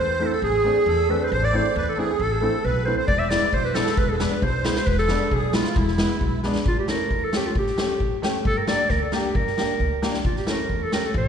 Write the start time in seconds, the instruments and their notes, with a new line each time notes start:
Already playing: upright bass E2
0.00 clarinet C5, accordion C5
0.19 upright piano A3 C4 E4, clarinet A4
0.32 accordion A4, clarinet A4
0.42 upright bass A1, accordion G#4, clarinet G#4
0.64 upright piano A3 C4 D4
0.86 upright bass E2, accordion A4
1.08 upright piano A3 C4 D4, clarinet B4
1.21 clarinet B4 C5
1.26 accordion B4, clarinet B4
1.32 upright bass A1, accordion C5, clarinet C5
1.42 accordion D5, clarinet D5
1.53 upright piano A3 C4 E4, clarinet C5
1.76 upright bass E2, accordion B4, clarinet B4
1.89 clarinet A4
1.93 accordion A4
1.97 upright piano A3 C4 E4, accordion G#4, clarinet G#4
2.19 upright bass A1, clarinet A4, accordion A4
2.31 clarinet G#4
2.41 upright piano A3 C4 E4, clarinet A4
2.64 upright bass B1, clarinet B4, accordion B4
2.86 upright piano A3 C4 E4, clarinet C5
2.97 clarinet C5, accordion C5
3.08 upright bass E1, clarinet D5, accordion D5, kick
3.19 clarinet E5
3.29 upright piano G#3 B3 E4, clarinet D5, accordion D5, snare
3.53 upright bass B1, accordion C5, clarinet C5, kick
3.64 clarinet B4
3.75 upright piano G#3 B3 E4, clarinet A4, accordion A4, snare
3.87 snare
3.97 upright bass E1, clarinet B4, accordion B4, kick
4.09 clarinet G#4 A4, accordion A4
4.15 clarinet A4
4.20 upright piano G#3 B3 D4, clarinet B4, accordion B4, snare
4.42 upright bass B1, clarinet C5, accordion C5, kick
4.64 upright piano G#3 B3 E4, clarinet G#4, snare
4.76 clarinet C5, accordion C5, snare
4.87 upright bass E1, clarinet B4, accordion B4, kick
4.98 clarinet A4, accordion A4, snare
5.08 upright piano G#3 B3 D4, snare
5.31 upright bass B1, clarinet G#4, accordion G#4, kick
5.53 upright piano G#3 B3 E4, clarinet F4, accordion F4, snare
5.64 snare
5.76 upright bass E1, clarinet E4, accordion E4, kick
5.88 snare
5.98 upright piano G#3 B3 E4, snare
6.10 snare
6.21 upright bass B1, kick
6.43 upright piano G#3 B3 D4, snare
6.55 snare
6.66 upright bass A1, clarinet F4, kick
6.79 clarinet G4
6.88 upright piano A3 C#4 E4, clarinet A#4, snare
7.11 upright bass E2, kick
7.24 clarinet A4
7.33 upright piano A3 C#4 G4, snare
7.37 clarinet G4
7.47 clarinet F4
7.55 upright bass A1, clarinet G4, kick
7.67 snare
7.77 upright piano A3 C#4 G4, snare
8.00 upright bass A1, kick
8.22 upright piano A3 C#4 G4, snare
8.45 upright bass G1, clarinet A4, kick
8.58 clarinet A#4
8.67 upright piano A#3 D4 G4, clarinet D5, snare
8.89 upright bass D2, clarinet A#4, kick, snare
9.02 clarinet A4
9.12 upright piano A#3 D4 G4, clarinet G4, snare
9.35 upright bass G1, clarinet A#4, kick
9.47 snare
9.58 upright piano A#3 D4 G4, snare
9.80 upright bass D2, kick
10.02 upright piano A#3 D4 G4, snare
10.14 snare
10.25 upright bass A1, clarinet F4, kick
10.36 clarinet G4, snare
10.47 upright piano A3 C#4 E4, clarinet A#4, snare
10.69 upright bass E2, kick
10.83 clarinet A4
10.92 upright piano A3 C#4 G4, clarinet A#4, snare
11.06 clarinet A4
11.14 upright bass A1, clarinet C#5, kick